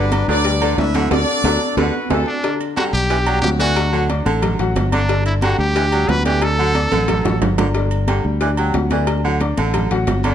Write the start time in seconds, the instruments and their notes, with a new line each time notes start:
Already playing: fingered electric bass G1, grand piano G3 B4 F#5, horn section D4 F#4 B4 D5
0.12 cowbell, high conga, low timbale, low agogo
0.28 fingered electric bass D2, grand piano D3 D4 D5, baritone saxophone F#3, horn section D4 F#4 B4 D5, high conga
0.45 grand piano G3 G4 G5, cowbell, high conga, low agogo
0.61 baritone saxophone D3, grand piano D3 D4 D5, high conga, low agogo
0.78 fingered electric bass D2, horn section E4 B4 E5, cowbell, high conga, low timbale
0.94 baritone saxophone D3, grand piano F#3 F#4 F#5, cowbell, high conga, low agogo
1.11 fingered electric bass D2, grand piano D4 F#4 A4, horn section D4 F#4 A4 D5, cowbell, high conga, high timbale
1.44 fingered electric bass D2, baritone saxophone F#3, grand piano D4 F#4 A4, cowbell, high conga, high timbale
1.77 fingered electric bass D2, baritone saxophone D3, horn section B3 F#4 B4, grand piano D4 F#4 A4, cowbell, high conga, high timbale
2.10 fingered electric bass D2, baritone saxophone E3, horn section A3 C4 F#4 A4, grand piano D4 F#4 A4, cowbell, high conga, high timbale
2.27 trumpet D4
2.44 grand piano D3 D4 D5, cowbell, high conga, low agogo
2.60 high conga, low agogo
2.76 baritone saxophone D3, grand piano G3 G4 G5, trumpet F#4, cowbell, high conga, low timbale, low agogo
2.93 fingered electric bass B1, trumpet G4
3.10 baritone saxophone E3, grand piano D4 D5 D6, cowbell, high conga, low agogo
3.26 baritone saxophone F#3, grand piano G3 G4 G5, high conga, low agogo
3.42 fingered electric bass D2, grand piano F#3 F#4 F#5, trumpet G4, cowbell, high conga, low timbale
3.59 grand piano D3 D4 D5, baritone saxophone E3, trumpet F#4, cowbell, high conga, low agogo
3.76 cowbell, high conga, low agogo
3.92 baritone saxophone D3, grand piano F#3 F#4 F#5, high conga
4.09 grand piano D4 D5 D6, cowbell, high conga, low timbale, low agogo
4.25 fingered electric bass A1, baritone saxophone D3, grand piano A3 A4 A5, high conga, low agogo
4.42 cowbell, high conga, low conga, low agogo
4.59 fingered electric bass A1, grand piano F#3 F#4 F#5, cowbell, high conga
4.76 fingered electric bass G1, cowbell, high conga, low timbale, low agogo
4.92 baritone saxophone D3, grand piano D4 D5 D6, trumpet D4, cowbell, high conga, low agogo
5.09 grand piano D3 D4 D5, cowbell, low agogo
5.26 trumpet E4, high conga, low agogo
5.42 baritone saxophone D3, grand piano G3 G4 G5, trumpet F#4, cowbell, high conga, low timbale, low agogo
5.59 fingered electric bass D2, trumpet G4, high conga
5.75 baritone saxophone E3, grand piano D4 D5 D6, cowbell, high conga, low agogo
5.91 baritone saxophone F#3, grand piano G3 G4 G5, high conga, low agogo
6.08 fingered electric bass D2, grand piano F#3 F#4 F#5, trumpet B4, cowbell, high conga, low timbale
6.25 grand piano D3 D4 D5, baritone saxophone E3, trumpet G4, cowbell, high conga, low agogo
6.42 trumpet A4, cowbell, low agogo
6.58 baritone saxophone D3, grand piano F#3 F#4 F#5, high conga
6.75 grand piano D4 D5 D6, cowbell, high conga, low timbale, low agogo
6.91 fingered electric bass A1, baritone saxophone D3, grand piano A3 A4 A5, low conga, high timbale, low agogo
7.08 cowbell, high bongo, low conga, high timbale, low agogo
7.25 fingered electric bass A1, grand piano F#3 F#4 F#5, cowbell, high bongo, low conga, low timbale
7.41 fingered electric bass G1, cowbell, low bongo, low conga, low timbale, low agogo
7.58 baritone saxophone D3, grand piano D4 D5 D6, cowbell, low bongo, low conga, low timbale, low agogo
7.75 grand piano D3 D4 D5, cowbell, high conga, low agogo
7.91 high conga, low agogo
8.08 baritone saxophone D3, grand piano G3 G4 G5, cowbell, high conga, low timbale, low agogo
8.25 fingered electric bass D2, high conga
8.41 baritone saxophone E3, grand piano D4 D5 D6, cowbell, high conga, low agogo
8.57 baritone saxophone F#3, grand piano G3 G4 G5, high conga, low agogo
8.74 fingered electric bass D2, grand piano F#3 F#4 F#5, cowbell, high conga, low timbale
8.90 grand piano D3 D4 D5, baritone saxophone E3, cowbell, high conga, low agogo
9.07 cowbell, high conga, low agogo
9.24 baritone saxophone D3, grand piano F#3 F#4 F#5, high conga
9.41 grand piano D4 D5 D6, cowbell, high conga, low timbale, low agogo
9.57 fingered electric bass A1, baritone saxophone D3, grand piano A3 A4 A5, high conga, low agogo
9.74 cowbell, high conga, low conga, low agogo
9.91 fingered electric bass A1, grand piano F#3 F#4 F#5, cowbell, high conga
10.07 fingered electric bass G1, cowbell, high conga, low timbale, low agogo
10.24 baritone saxophone D3, grand piano D4 D5 D6, trumpet D4, cowbell, high conga, low agogo